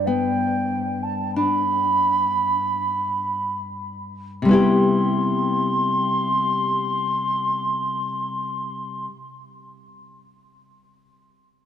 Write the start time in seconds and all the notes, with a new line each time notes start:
Already playing: G2 D4
0.06 B3 G5
1.03 A5
1.36 D4 B5
4.42 C3 G3 C6
4.49 B3 E4
4.53 G4